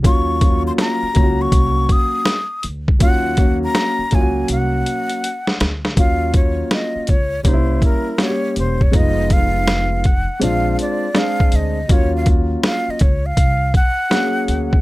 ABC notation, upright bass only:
X:1
M:4/4
L:1/16
Q:"Swing 16ths" 1/4=81
K:Ebdor
V:1 name="Upright bass" clef=bass
E,,4 z2 D,,2 C,,2 z4 =D,,2 | E,,4 z2 D,,2 C,,2 z4 =D,,2 | E,,4 z2 D,,2 C,,2 z4 =E,,,2 | F,,,6- F,,, z B,,,2 z4 =D,,2 |
E,,4 z2 D,,2 C,,2 z4 =D,,2 |]